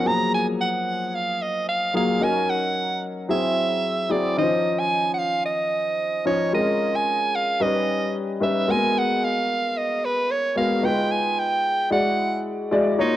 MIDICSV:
0, 0, Header, 1, 3, 480
1, 0, Start_track
1, 0, Tempo, 539084
1, 47, Time_signature, 4, 2, 24, 8
1, 11723, End_track
2, 0, Start_track
2, 0, Title_t, "Soprano saxophone"
2, 0, Program_c, 0, 64
2, 65, Note_on_c, 0, 82, 94
2, 296, Note_off_c, 0, 82, 0
2, 307, Note_on_c, 0, 80, 85
2, 411, Note_off_c, 0, 80, 0
2, 544, Note_on_c, 0, 78, 89
2, 962, Note_off_c, 0, 78, 0
2, 962, Note_on_c, 0, 78, 56
2, 1021, Note_on_c, 0, 77, 82
2, 1035, Note_off_c, 0, 78, 0
2, 1266, Note_on_c, 0, 75, 74
2, 1280, Note_off_c, 0, 77, 0
2, 1496, Note_off_c, 0, 75, 0
2, 1501, Note_on_c, 0, 77, 82
2, 1719, Note_off_c, 0, 77, 0
2, 1750, Note_on_c, 0, 77, 74
2, 1988, Note_on_c, 0, 80, 82
2, 2001, Note_off_c, 0, 77, 0
2, 2226, Note_on_c, 0, 78, 77
2, 2239, Note_off_c, 0, 80, 0
2, 2699, Note_off_c, 0, 78, 0
2, 2945, Note_on_c, 0, 76, 83
2, 3664, Note_on_c, 0, 74, 73
2, 3678, Note_off_c, 0, 76, 0
2, 3898, Note_off_c, 0, 74, 0
2, 3904, Note_on_c, 0, 75, 87
2, 4267, Note_on_c, 0, 80, 93
2, 4281, Note_off_c, 0, 75, 0
2, 4560, Note_off_c, 0, 80, 0
2, 4574, Note_on_c, 0, 78, 63
2, 4618, Note_on_c, 0, 77, 89
2, 4631, Note_off_c, 0, 78, 0
2, 4852, Note_off_c, 0, 77, 0
2, 4858, Note_on_c, 0, 75, 85
2, 5539, Note_off_c, 0, 75, 0
2, 5579, Note_on_c, 0, 73, 78
2, 5799, Note_off_c, 0, 73, 0
2, 5825, Note_on_c, 0, 75, 78
2, 6194, Note_on_c, 0, 80, 84
2, 6207, Note_off_c, 0, 75, 0
2, 6548, Note_on_c, 0, 77, 81
2, 6562, Note_off_c, 0, 80, 0
2, 6785, Note_on_c, 0, 75, 75
2, 6798, Note_off_c, 0, 77, 0
2, 7258, Note_off_c, 0, 75, 0
2, 7506, Note_on_c, 0, 76, 86
2, 7756, Note_on_c, 0, 80, 97
2, 7770, Note_off_c, 0, 76, 0
2, 7999, Note_on_c, 0, 78, 93
2, 8013, Note_off_c, 0, 80, 0
2, 8230, Note_on_c, 0, 77, 93
2, 8243, Note_off_c, 0, 78, 0
2, 8703, Note_on_c, 0, 75, 87
2, 8717, Note_off_c, 0, 77, 0
2, 8947, Note_on_c, 0, 71, 82
2, 8960, Note_off_c, 0, 75, 0
2, 9180, Note_on_c, 0, 73, 92
2, 9193, Note_off_c, 0, 71, 0
2, 9410, Note_off_c, 0, 73, 0
2, 9415, Note_on_c, 0, 77, 85
2, 9658, Note_on_c, 0, 79, 89
2, 9671, Note_off_c, 0, 77, 0
2, 9895, Note_on_c, 0, 80, 87
2, 9909, Note_off_c, 0, 79, 0
2, 10141, Note_on_c, 0, 79, 89
2, 10154, Note_off_c, 0, 80, 0
2, 10610, Note_off_c, 0, 79, 0
2, 10616, Note_on_c, 0, 78, 79
2, 11057, Note_off_c, 0, 78, 0
2, 11580, Note_on_c, 0, 63, 76
2, 11723, Note_off_c, 0, 63, 0
2, 11723, End_track
3, 0, Start_track
3, 0, Title_t, "Grand piano"
3, 0, Program_c, 1, 0
3, 0, Control_c, 1, 64, 127
3, 37, Note_on_c, 1, 54, 66
3, 42, Note_on_c, 1, 58, 62
3, 47, Note_on_c, 1, 53, 60
3, 50, Note_on_c, 1, 68, 74
3, 59, Control_c, 1, 64, 0
3, 196, Control_c, 1, 64, 127
3, 858, Note_off_c, 1, 54, 0
3, 860, Note_off_c, 1, 58, 0
3, 862, Note_off_c, 1, 53, 0
3, 864, Note_off_c, 1, 68, 0
3, 1722, Note_on_c, 1, 54, 68
3, 1725, Note_on_c, 1, 58, 61
3, 1727, Note_on_c, 1, 65, 56
3, 1733, Note_on_c, 1, 68, 72
3, 1931, Note_off_c, 1, 54, 0
3, 1932, Note_off_c, 1, 58, 0
3, 1934, Note_off_c, 1, 65, 0
3, 1936, Note_off_c, 1, 68, 0
3, 1960, Note_on_c, 1, 54, 65
3, 1963, Note_on_c, 1, 61, 57
3, 1967, Note_on_c, 1, 63, 64
3, 1972, Note_on_c, 1, 70, 69
3, 1980, Control_c, 1, 64, 0
3, 2131, Control_c, 1, 64, 127
3, 2780, Note_off_c, 1, 54, 0
3, 2782, Note_off_c, 1, 61, 0
3, 2784, Note_off_c, 1, 63, 0
3, 2786, Note_off_c, 1, 70, 0
3, 2923, Note_on_c, 1, 54, 63
3, 2926, Note_on_c, 1, 60, 57
3, 2930, Note_on_c, 1, 64, 62
3, 2933, Note_on_c, 1, 68, 70
3, 2943, Control_c, 1, 64, 0
3, 3095, Control_c, 1, 64, 127
3, 3542, Note_off_c, 1, 54, 0
3, 3543, Note_off_c, 1, 60, 0
3, 3545, Note_off_c, 1, 64, 0
3, 3547, Note_off_c, 1, 68, 0
3, 3642, Note_on_c, 1, 54, 61
3, 3645, Note_on_c, 1, 60, 60
3, 3649, Note_on_c, 1, 64, 60
3, 3654, Note_on_c, 1, 68, 72
3, 3851, Note_off_c, 1, 54, 0
3, 3853, Note_off_c, 1, 60, 0
3, 3855, Note_off_c, 1, 64, 0
3, 3858, Note_off_c, 1, 68, 0
3, 3888, Note_on_c, 1, 51, 51
3, 3892, Note_on_c, 1, 61, 57
3, 3894, Note_on_c, 1, 63, 58
3, 3899, Note_on_c, 1, 72, 74
3, 3903, Control_c, 1, 64, 0
3, 3944, Note_on_c, 1, 53, 66
3, 3952, Note_off_c, 1, 51, 0
3, 4072, Control_c, 1, 64, 127
3, 4706, Note_off_c, 1, 61, 0
3, 4707, Note_off_c, 1, 63, 0
3, 4709, Note_off_c, 1, 72, 0
3, 4732, Note_off_c, 1, 53, 0
3, 5567, Note_on_c, 1, 53, 65
3, 5568, Note_on_c, 1, 61, 62
3, 5572, Note_on_c, 1, 63, 59
3, 5577, Note_on_c, 1, 75, 74
3, 5774, Note_off_c, 1, 53, 0
3, 5775, Note_off_c, 1, 61, 0
3, 5777, Note_off_c, 1, 63, 0
3, 5779, Note_off_c, 1, 75, 0
3, 5807, Note_on_c, 1, 56, 66
3, 5811, Note_on_c, 1, 60, 51
3, 5813, Note_on_c, 1, 65, 60
3, 5816, Note_on_c, 1, 70, 73
3, 5825, Control_c, 1, 64, 0
3, 5868, Note_on_c, 1, 61, 60
3, 5873, Note_off_c, 1, 60, 0
3, 5960, Control_c, 1, 64, 127
3, 6623, Note_off_c, 1, 56, 0
3, 6626, Note_off_c, 1, 65, 0
3, 6628, Note_off_c, 1, 70, 0
3, 6654, Note_off_c, 1, 61, 0
3, 6764, Note_on_c, 1, 55, 64
3, 6769, Note_on_c, 1, 61, 62
3, 6772, Note_on_c, 1, 63, 61
3, 6774, Note_on_c, 1, 71, 72
3, 6784, Control_c, 1, 64, 0
3, 6918, Control_c, 1, 64, 127
3, 7382, Note_off_c, 1, 55, 0
3, 7384, Note_off_c, 1, 61, 0
3, 7386, Note_off_c, 1, 63, 0
3, 7386, Note_off_c, 1, 71, 0
3, 7481, Note_on_c, 1, 55, 69
3, 7487, Note_on_c, 1, 61, 62
3, 7488, Note_on_c, 1, 63, 63
3, 7492, Note_on_c, 1, 71, 71
3, 7691, Note_off_c, 1, 55, 0
3, 7693, Note_off_c, 1, 61, 0
3, 7694, Note_off_c, 1, 63, 0
3, 7696, Note_off_c, 1, 71, 0
3, 7719, Note_on_c, 1, 56, 67
3, 7723, Note_on_c, 1, 58, 50
3, 7726, Note_on_c, 1, 66, 61
3, 7728, Note_on_c, 1, 70, 78
3, 7741, Control_c, 1, 64, 0
3, 7780, Note_on_c, 1, 59, 58
3, 7789, Note_off_c, 1, 58, 0
3, 7888, Control_c, 1, 64, 127
3, 8538, Note_off_c, 1, 56, 0
3, 8541, Note_off_c, 1, 66, 0
3, 8542, Note_off_c, 1, 70, 0
3, 8569, Note_off_c, 1, 59, 0
3, 9397, Note_on_c, 1, 56, 70
3, 9401, Note_on_c, 1, 59, 64
3, 9405, Note_on_c, 1, 66, 66
3, 9409, Note_on_c, 1, 70, 75
3, 9607, Note_off_c, 1, 56, 0
3, 9609, Note_off_c, 1, 59, 0
3, 9611, Note_off_c, 1, 66, 0
3, 9613, Note_off_c, 1, 70, 0
3, 9639, Note_on_c, 1, 56, 69
3, 9641, Note_on_c, 1, 63, 61
3, 9646, Note_on_c, 1, 65, 60
3, 9649, Note_on_c, 1, 71, 74
3, 9660, Control_c, 1, 64, 0
3, 9825, Control_c, 1, 64, 127
3, 10456, Note_off_c, 1, 56, 0
3, 10457, Note_off_c, 1, 63, 0
3, 10460, Note_off_c, 1, 65, 0
3, 10461, Note_off_c, 1, 71, 0
3, 10595, Note_on_c, 1, 56, 69
3, 10598, Note_on_c, 1, 64, 63
3, 10603, Note_on_c, 1, 66, 62
3, 10606, Note_on_c, 1, 74, 70
3, 10618, Control_c, 1, 64, 0
3, 10798, Control_c, 1, 64, 127
3, 11214, Note_off_c, 1, 56, 0
3, 11215, Note_off_c, 1, 64, 0
3, 11218, Note_off_c, 1, 66, 0
3, 11219, Note_off_c, 1, 74, 0
3, 11319, Note_on_c, 1, 56, 86
3, 11320, Note_on_c, 1, 64, 75
3, 11325, Note_on_c, 1, 66, 70
3, 11330, Note_on_c, 1, 74, 93
3, 11526, Note_off_c, 1, 56, 0
3, 11526, Note_off_c, 1, 64, 0
3, 11529, Note_off_c, 1, 66, 0
3, 11531, Note_off_c, 1, 74, 0
3, 11557, Note_on_c, 1, 58, 66
3, 11561, Note_on_c, 1, 65, 65
3, 11563, Note_on_c, 1, 66, 64
3, 11567, Note_on_c, 1, 73, 80
3, 11575, Control_c, 1, 64, 0
3, 11723, Note_off_c, 1, 58, 0
3, 11723, Note_off_c, 1, 65, 0
3, 11723, Note_off_c, 1, 66, 0
3, 11723, Note_off_c, 1, 73, 0
3, 11723, End_track
0, 0, End_of_file